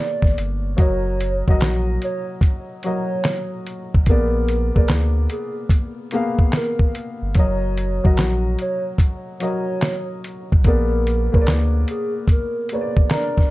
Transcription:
Already playing: A#3 G#4 B4 C#5 D5
0.00 D5
0.22 G#1, kick, snare
0.37 G1, closed hi-hat
0.77 F#1 F#3 F#4 A#4 C#5 D#5, kick, closed hi-hat
1.20 closed hi-hat
1.48 G#1 F#3 F#4 A#4 D#5, kick
1.61 A#1, snare, clap, closed hi-hat
2.02 C#5, closed hi-hat
2.41 kick, closed hi-hat
2.83 F#3 F#4 A#4 C#5 D#5, closed hi-hat
3.24 snare, clap, closed hi-hat
3.67 closed hi-hat
3.94 B1, kick
4.06 A#1 A#3 B3 G#4 A#4, kick, closed hi-hat
4.11 D5
4.48 closed hi-hat
4.75 B1 A#3 G#4 A#4 B4 D5, kick
4.88 D2, snare, clap, closed hi-hat
5.30 G#4, closed hi-hat
5.69 kick, closed hi-hat
6.11 A#3 B3 G#4, closed hi-hat
6.15 F5
6.39 kick
6.53 A#4, snare, clap, closed hi-hat
6.79 kick
6.95 closed hi-hat
7.22 G1
7.35 F#1 F#3 F#4 C#5, kick, closed hi-hat
7.39 A#4 D#5
7.77 closed hi-hat
8.04 G#1 F#3 F#4 A#4 D#5, kick
8.17 A#1, snare, clap, closed hi-hat
8.59 C#5, closed hi-hat
8.98 kick, closed hi-hat
9.40 F#3 F#4 A#4 C#5 D#5, closed hi-hat
9.82 snare, clap, closed hi-hat
10.24 closed hi-hat
10.52 B1, kick
10.64 A#1 A#3 B3 G#4 A#4 D5, kick, closed hi-hat
11.07 closed hi-hat
11.32 B1 A#3 G#4 A#4 B4 C#5, kick
11.41 D5
11.47 D2, snare, clap, closed hi-hat
11.88 G#4, closed hi-hat
12.28 kick, closed hi-hat
12.32 A#4
12.69 A#3 G#4 D5, closed hi-hat
12.74 B4 C#5
12.81 D5
12.97 kick
13.10 D4 A#4 D5, snare, clap, closed hi-hat
13.38 kick, snare

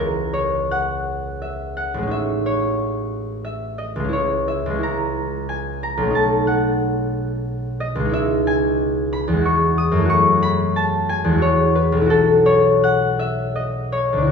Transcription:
Already playing: C#2 G#3 C#4 E4 A#4 E5
0.33 C#5
0.71 F#5
1.42 E5
1.77 F#5
1.94 A1
1.98 G#3
2.02 C#4
2.07 D#4
2.11 E5
2.46 C#5
3.45 E5
3.78 D#5
3.96 C#2 G#3
4.04 C#4
4.09 E4
4.13 C#5
4.48 E5
4.66 C#2
4.70 G#3
4.75 C#4 E4
4.83 A#5
5.49 G#5
5.83 A#5
5.97 B1
6.02 A3
6.06 C#4
6.10 D#4
6.15 A5
6.47 F#5
7.80 D#5
7.95 C#2
8.00 G#3
8.05 D#4
8.09 E4
8.13 E5
8.47 G#5
9.13 B5
9.28 E2
9.33 G#3
9.37 E4
9.41 F#4
9.45 C#6
9.78 D#6
9.92 F#2
9.97 A3 E4
10.05 F#4
10.10 C#6
10.43 B5
10.76 A5
11.09 G#5
11.24 E2
11.29 G#3
11.33 E4
11.38 F#4 C#5
11.75 B4
11.92 B1
11.97 C#4
12.01 E4
12.06 F#4
12.10 A4
12.46 C#5
12.84 F#5
13.19 E5
13.56 D#5
13.92 C#5
14.13 D2
14.17 D4
14.22 E4
14.27 F#4

